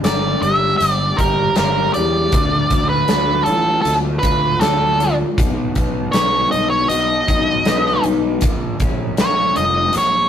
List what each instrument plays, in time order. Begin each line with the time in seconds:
Already playing: clean electric guitar G3 D4
0.03 picked electric bass G1, clean electric guitar A#4, lead electric guitar D5, snare, closed hi-hat
0.42 picked electric bass G1, clean electric guitar G4, lead electric guitar E5, closed hi-hat
0.78 picked electric bass G1, clean electric guitar G3, lead electric guitar D5, closed hi-hat
1.17 picked electric bass G1, clean electric guitar G4, lead electric guitar A#4, kick, closed hi-hat
1.56 picked electric bass G1, lead electric guitar A#4, clean electric guitar A#4, snare, closed hi-hat
1.94 picked electric bass E2, clean electric guitar G4, lead electric guitar D5, closed hi-hat
2.32 picked electric bass D2, clean electric guitar D3, kick, closed hi-hat
2.70 picked electric bass D2, clean electric guitar D4, kick, closed hi-hat
2.89 lead electric guitar B4
3.08 picked electric bass D2, clean electric guitar A4, snare, closed hi-hat
3.43 lead electric guitar A4, closed hi-hat
3.47 picked electric bass A1, clean electric guitar F4
3.82 picked electric bass D2, clean electric guitar D3, lead electric guitar A4, closed hi-hat
4.19 lead electric guitar B4, closed hi-hat
4.23 picked electric bass D2, clean electric guitar F4, kick
4.60 picked electric bass D2, lead electric guitar A4, clean electric guitar A4, snare, closed hi-hat
5.00 clean electric guitar F4, closed hi-hat
5.37 picked electric bass B1, clean electric guitar B2, kick, closed hi-hat
5.75 picked electric bass B1, clean electric guitar B3, kick, closed hi-hat
6.12 picked electric bass B1, clean electric guitar B4, lead electric guitar C#5, snare, closed hi-hat
6.51 picked electric bass B1, clean electric guitar D#4, lead electric guitar D#5, closed hi-hat
6.70 lead electric guitar C#5
6.88 picked electric bass B1, clean electric guitar F#3, lead electric guitar D#5, closed hi-hat
7.28 picked electric bass B1, clean electric guitar D#4, kick, closed hi-hat
7.65 picked electric bass B1, clean electric guitar B4, snare, closed hi-hat
7.86 snare
8.04 picked electric bass B1, clean electric guitar D#4, closed hi-hat
8.41 picked electric bass A#1, clean electric guitar A#2, kick, closed hi-hat
8.80 picked electric bass A#1, clean electric guitar C#4, kick, closed hi-hat
9.17 picked electric bass A#1, clean electric guitar A#4, lead electric guitar C#5, snare, closed hi-hat
9.56 picked electric bass F1, clean electric guitar F4, lead electric guitar D#5, closed hi-hat
9.93 picked electric bass A#1, clean electric guitar A#3, closed hi-hat
9.98 lead electric guitar C#5